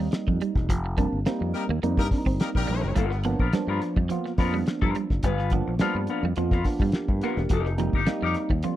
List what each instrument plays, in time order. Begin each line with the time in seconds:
Already playing: tine electric piano G3 A#3 C4 D#4
0.12 muted clean electric guitar stroke, snare, closed hi-hat
0.28 fingered electric bass F2, clean electric guitar F3, kick
0.41 clean electric guitar G3, closed hi-hat
0.55 fingered electric bass E1, kick, snare
0.69 fingered electric bass F1, clean electric guitar F3, kick, closed hi-hat
0.86 muted clean electric guitar stroke
0.97 tine electric piano G3 A#3 C4 D4, clean electric guitar G3, kick, closed hi-hat
1.12 fingered electric bass G1
1.26 tine electric piano G3 A#3 C4 D#4, clean electric guitar C4, snare, closed hi-hat
1.41 fingered electric bass F2, muted clean electric guitar stroke
1.54 horn section G3 A#3 D#4 A#4, closed hi-hat
1.69 fingered electric bass D#2, clean electric guitar A#3
1.83 fingered electric bass F2, tine electric piano G3 A#3 C4 D#4, clean electric guitar A#3, closed hi-hat
1.97 fingered electric bass G2, horn section G3 A#3 D#4 A#4, muted clean electric guitar stroke, kick, snare
2.11 tine electric piano G3 A#3 C4 D4, kick, snare, open hi-hat
2.18 tine electric piano D#4
2.26 fingered electric bass G1, clean electric guitar C4, kick
2.39 horn section G3 A#3 D#4 A#4, snare, closed hi-hat
2.55 fingered electric bass A#1, horn section G3 A#3 D#4 A#4, kick
2.67 fingered electric bass A#1, clean electric guitar G3, snare, closed hi-hat
2.83 fingered electric bass F#1, snare
2.96 fingered electric bass G1, clean electric guitar G3 B3 F4 A#4, kick, closed hi-hat
3.11 muted clean electric guitar stroke, snare
3.23 clean electric guitar F3, tine electric piano F3 A#3 B3 D4, muted clean electric guitar stroke, closed hi-hat
3.39 fingered electric bass A#1, clean electric guitar B3 F4 A#4, kick
3.53 tine electric piano F3 A#3 B3 D4, clean electric guitar G3, muted clean electric guitar stroke, snare, closed hi-hat
3.67 fingered electric bass G2, clean electric guitar B3 F4 A#4, muted clean electric guitar stroke
3.82 muted clean electric guitar stroke, snare, closed hi-hat
3.96 fingered electric bass F2, clean electric guitar G3, muted clean electric guitar stroke, kick
4.09 clean electric guitar F3, tine electric piano F3 A#3 B3 F4, muted clean electric guitar stroke, closed hi-hat
4.25 muted clean electric guitar stroke, snare
4.38 fingered electric bass F2, tine electric piano F3 A#3 B3 D4, clean electric guitar B3 F4 A#4, kick, snare, open hi-hat
4.54 clean electric guitar G3, muted clean electric guitar stroke
4.67 muted clean electric guitar stroke, snare, closed hi-hat
4.82 fingered electric bass G2, clean electric guitar F3 B3 F4 A#4, kick
4.95 clean electric guitar G3, muted clean electric guitar stroke, closed hi-hat
5.10 fingered electric bass F#1, muted clean electric guitar stroke, kick, snare
5.23 fingered electric bass G1, clean electric guitar G3 B3 F4 B4, kick, closed hi-hat
5.38 muted clean electric guitar stroke, snare
5.50 tine electric piano F3 A#3 B3 D4, clean electric guitar F3, kick, closed hi-hat
5.68 fingered electric bass A#1, muted clean electric guitar stroke
5.79 tine electric piano F3 A#3 B3 D4, clean electric guitar G3 B3 F4 A#4, muted fingered electric bass stroke, snare, closed hi-hat
5.95 fingered electric bass G2, muted clean electric guitar stroke
6.07 clean electric guitar B3 F4 A#4, closed hi-hat
6.23 fingered electric bass F2, clean electric guitar G3, muted clean electric guitar stroke
6.36 fingered electric bass F2, tine electric piano F3 A#3 B3 F4, clean electric guitar F3, muted clean electric guitar stroke, closed hi-hat
6.51 clean electric guitar B3 F4 A#4, muted clean electric guitar stroke, kick, snare
6.64 tine electric piano F3 A#3 B3 D4, muted clean electric guitar stroke, kick, snare, open hi-hat
6.80 fingered electric bass G2, clean electric guitar G3, muted clean electric guitar stroke, kick
6.92 tine electric piano G4 A#4, muted clean electric guitar stroke, snare, closed hi-hat
7.08 fingered electric bass G2, muted clean electric guitar stroke, kick
7.21 clean electric guitar A#3 B3 F4 A#4, tine electric piano G4 B4, snare, closed hi-hat
7.36 fingered electric bass E1, tine electric piano G4 A#4, muted clean electric guitar stroke, snare
7.49 fingered electric bass F1, clean electric guitar F3 D#4 G4 A#4, kick, closed hi-hat
7.65 muted clean electric guitar stroke, snare
7.78 clean electric guitar F3, tine electric piano G3 A#3 C4 D#4, muted clean electric guitar stroke, closed hi-hat
7.93 fingered electric bass G1, clean electric guitar D#4 G4 A#4, kick
8.06 tine electric piano G3 A#3 C4 D#4, clean electric guitar G3, muted clean electric guitar stroke, snare, closed hi-hat
8.22 fingered electric bass F2, clean electric guitar D#4 G4 A#4, muted clean electric guitar stroke
8.35 muted clean electric guitar stroke, snare, closed hi-hat
8.50 fingered electric bass D#2, clean electric guitar G3, muted clean electric guitar stroke, kick
8.63 clean electric guitar F3, tine electric piano G3 A#3 C4 F4, muted clean electric guitar stroke, closed hi-hat